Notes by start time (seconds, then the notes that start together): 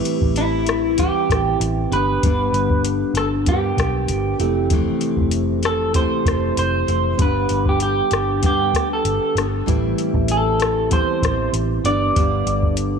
Already playing: A2 E3 G3 C4 E4 G4 B4
0.05 closed hi-hat
0.21 A1, kick
0.36 E4, closed hi-hat
0.66 cross-stick, closed hi-hat
0.97 E3 G3 C4 E4 G4 B4, kick, closed hi-hat
1.30 A1, kick, cross-stick, closed hi-hat
1.60 A1, closed hi-hat
1.91 G1 B3 D4 G4 B4, closed hi-hat
1.95 G3
2.23 G1 G2 D3 G3 B3 D4, kick, closed hi-hat
2.53 G1, closed hi-hat
2.70 kick
2.85 closed hi-hat
3.14 G1 A4, cross-stick, closed hi-hat
3.45 G2 D3 G3 B3 D4 G4 A#4, kick, closed hi-hat
3.49 B3 D4 G4
3.54 B4
3.77 B1, kick, cross-stick, closed hi-hat
4.07 G1, closed hi-hat
4.39 F1 E3 A3 C4 E4 G4 A4, closed hi-hat
4.70 F2 C3 E3 A3 C4, kick, closed hi-hat
5.01 closed hi-hat
5.17 F1, kick
5.31 closed hi-hat
5.63 A4, cross-stick, closed hi-hat
5.94 C3 E3 A3 C4 E4 G4 A4 C5, kick, closed hi-hat
6.26 F1, kick, cross-stick, closed hi-hat
6.57 F1 C5, closed hi-hat
6.87 F1 E3 A3 C4, closed hi-hat
7.18 G1 G2 D3 G3 B3 D4 G4 B4, kick, closed hi-hat
7.22 B4
7.49 G1, closed hi-hat
7.66 G4, kick
7.80 G4, closed hi-hat
8.11 G1, cross-stick, closed hi-hat
8.42 G2 D3 G3 B3 D4 G4 B4, kick, closed hi-hat
8.46 G4
8.74 D2, kick, cross-stick, closed hi-hat
8.93 A4
9.05 G1, closed hi-hat
9.35 G1 G3 B3 D4, cross-stick, closed hi-hat
9.66 A1 A2 E3 G3 C4 E4 G4 B4, kick, closed hi-hat
9.98 closed hi-hat
10.14 A1, kick
10.28 A4, closed hi-hat
10.60 cross-stick, closed hi-hat
10.90 E3 G3 B3 C4 E4 G4 C5, kick, closed hi-hat
10.97 C4
11.22 A1, kick, cross-stick, closed hi-hat
11.53 A1, closed hi-hat
11.84 G1 G3 B3 D4 G4 B4 D5, closed hi-hat
12.16 G1 G2 D3 G3 D4, kick, closed hi-hat
12.46 G1, closed hi-hat
12.63 kick
12.77 closed hi-hat